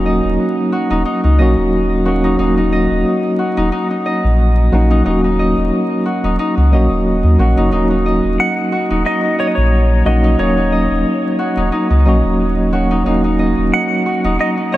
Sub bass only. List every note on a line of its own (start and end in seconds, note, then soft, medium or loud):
0.00 0.20 D#1 medium
0.24 0.37 D#1 medium
0.91 1.04 D#1 medium
1.24 1.41 C#2 medium
1.39 1.55 A#1 medium
1.57 2.36 D#1 medium
2.39 2.87 D#1 loud
2.90 3.04 D#1 medium
3.58 3.71 D#1 medium
4.24 4.70 A#1 medium
4.72 5.02 A#1 medium
5.06 5.54 D#1 loud
5.57 5.70 D#1 medium
6.24 6.37 D#1 medium
6.57 6.74 C#2 medium
6.72 6.88 A#1 medium
6.90 7.23 D#1 medium
7.24 7.37 D#2 loud
7.39 7.55 A#1 medium
7.57 7.70 F#1 medium
7.72 8.20 D#1 loud
8.24 8.37 D#1 medium
8.91 9.04 D#1 medium
9.58 10.03 A#1 medium
10.06 10.36 A#1 medium
10.39 10.87 D#1 loud
10.91 11.04 D#1 medium
11.57 11.70 D#1 medium
11.90 12.07 C#2 medium
12.06 12.22 A#1 medium
12.24 13.03 D#1 medium
13.06 13.54 D#1 medium
13.58 13.71 D#1 medium
14.24 14.37 D#1 medium